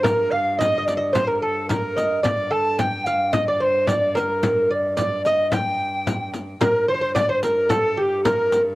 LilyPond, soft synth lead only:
\new Staff \with { instrumentName = "Soft synth lead" } { \time 2/4 \key g \minor \tempo 4 = 110 bes'8 f''8 ees''8 d''8 | c''16 bes'16 a'8 bes'8 ees''8 | d''8 a''8 g''8 f''8 | ees''16 d''16 c''8 d''8 bes'8~ |
bes'8 d''8 d''8 ees''8 | g''4. r8 | bes'8 c''8 d''16 c''16 bes'8 | a'8 g'8 bes'8. r16 | }